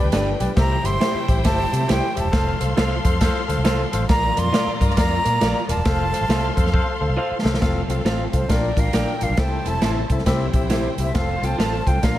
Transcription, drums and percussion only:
0.12 snare loud
0.12 closed hi-hat medium
0.40 closed hi-hat medium
0.57 kick loud
0.57 snare loud
0.57 closed hi-hat medium
0.85 closed hi-hat medium
1.01 snare loud
1.01 closed hi-hat medium
1.28 kick medium
1.28 closed hi-hat medium
1.45 kick loud
1.45 snare loud
1.45 closed hi-hat loud
1.73 closed hi-hat medium
1.89 snare loud
1.89 closed hi-hat loud
2.17 closed hi-hat medium
2.33 kick loud
2.33 snare loud
2.33 closed hi-hat medium
2.61 closed hi-hat medium
2.77 snare loud
2.77 closed hi-hat medium
3.05 kick medium
3.05 closed hi-hat medium
3.21 kick medium
3.21 snare loud
3.21 closed hi-hat loud
3.49 closed hi-hat medium
3.65 snare loud
3.65 closed hi-hat medium
3.93 closed hi-hat medium
4.09 kick loud
4.09 snare loud
4.09 closed hi-hat medium
4.37 closed hi-hat medium
4.54 snare loud
4.54 closed hi-hat medium
4.81 kick medium
4.81 closed hi-hat medium
4.90 snare soft
4.97 kick loud
4.97 snare loud
4.97 closed hi-hat loud
5.25 closed hi-hat medium
5.41 snare loud
5.41 closed hi-hat medium
5.69 closed hi-hat medium
5.85 kick loud
5.85 snare loud
5.85 closed hi-hat medium
6.14 closed hi-hat medium
6.30 snare loud
6.30 closed hi-hat medium
6.57 kick medium
6.57 closed hi-hat medium
6.67 snare soft
6.74 kick loud
7.46 snare loud
7.54 snare medium
7.62 kick loud
7.62 snare loud
7.62 closed hi-hat medium
7.90 closed hi-hat medium
8.06 snare loud
8.06 closed hi-hat medium
8.33 kick medium
8.33 closed hi-hat medium
8.49 kick medium
8.49 snare loud
8.49 closed hi-hat loud
8.77 kick medium
8.77 closed hi-hat medium
8.93 snare medium
8.93 closed hi-hat medium
9.21 closed hi-hat medium
9.37 kick loud
9.37 snare loud
9.37 closed hi-hat medium
9.66 closed hi-hat medium
9.82 snare loud
9.82 closed hi-hat medium
10.10 kick medium
10.10 closed hi-hat medium
10.18 snare soft
10.26 kick medium
10.26 snare loud
10.26 closed hi-hat loud
10.53 kick medium
10.53 closed hi-hat medium
10.70 snare medium
10.70 closed hi-hat medium
10.98 closed hi-hat medium
11.15 kick loud
11.15 snare loud
11.15 closed hi-hat medium
11.43 closed hi-hat medium
11.60 snare loud
11.60 closed hi-hat medium
11.87 kick medium
11.87 closed hi-hat medium
12.03 kick medium
12.03 snare loud
12.03 closed hi-hat loud

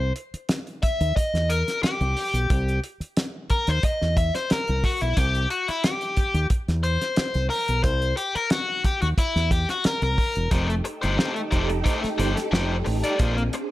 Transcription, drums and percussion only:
0.16 closed hi-hat medium
0.34 closed hi-hat medium
0.49 snare loud
0.49 closed hi-hat medium
0.67 closed hi-hat soft
0.83 kick medium
0.83 closed hi-hat medium
1.01 closed hi-hat soft
1.17 kick medium
1.17 closed hi-hat medium
1.35 snare soft
1.35 closed hi-hat soft
1.50 closed hi-hat medium
1.68 snare soft
1.68 closed hi-hat soft
1.83 snare loud
1.83 closed hi-hat medium
2.01 closed hi-hat soft
2.17 open hi-hat medium
2.34 closed hi-hat medium
2.50 kick loud
2.50 closed hi-hat medium
2.68 closed hi-hat soft
2.84 closed hi-hat medium
3.01 closed hi-hat soft
3.17 snare loud
3.17 closed hi-hat loud
3.50 kick medium
3.50 closed hi-hat medium
3.67 closed hi-hat soft
3.83 kick medium
3.83 closed hi-hat medium
4.02 snare soft
4.17 kick medium
4.17 closed hi-hat medium
4.35 snare soft
4.35 closed hi-hat soft
4.50 snare loud
4.50 closed hi-hat medium
4.67 closed hi-hat soft
4.84 kick medium
4.84 open hi-hat medium
5.01 closed hi-hat medium
5.17 kick loud
5.17 closed hi-hat medium
5.35 closed hi-hat soft
5.50 closed hi-hat medium
5.68 closed hi-hat soft
5.84 snare loud
5.84 closed hi-hat medium
6.01 closed hi-hat soft
6.17 kick medium
6.17 closed hi-hat medium
6.34 closed hi-hat soft
6.50 kick medium
6.50 closed hi-hat medium
6.68 snare soft
6.68 closed hi-hat soft
6.84 closed hi-hat medium
7.01 snare soft
7.01 closed hi-hat medium
7.16 snare loud
7.16 closed hi-hat medium
7.34 closed hi-hat soft
7.50 open hi-hat medium
7.68 closed hi-hat medium
7.84 kick loud
7.84 closed hi-hat medium
8.02 closed hi-hat soft
8.17 closed hi-hat medium
8.35 closed hi-hat soft
8.50 snare loud
8.50 closed hi-hat medium
8.84 kick medium
8.84 closed hi-hat medium
9.02 closed hi-hat soft
9.18 kick medium
9.18 closed hi-hat medium
9.36 snare soft
9.36 closed hi-hat soft
9.51 kick loud
9.51 closed hi-hat medium
9.69 snare soft
9.69 closed hi-hat medium
9.84 snare loud
9.84 closed hi-hat medium
10.02 closed hi-hat soft
10.18 kick medium
10.18 open hi-hat medium
10.35 closed hi-hat medium
10.51 kick loud
10.51 closed hi-hat medium
10.70 closed hi-hat soft
10.85 closed hi-hat medium
11.03 closed hi-hat soft
11.19 snare loud
11.36 closed hi-hat soft
11.52 kick medium
11.52 closed hi-hat medium
11.70 closed hi-hat soft
11.86 kick medium
11.86 closed hi-hat medium
12.04 snare soft
12.04 closed hi-hat soft
12.20 closed hi-hat medium
12.37 snare soft
12.37 closed hi-hat soft
12.53 snare loud
12.86 open hi-hat medium
13.04 closed hi-hat medium
13.19 kick loud
13.19 closed hi-hat medium
13.38 closed hi-hat soft
13.53 closed hi-hat medium

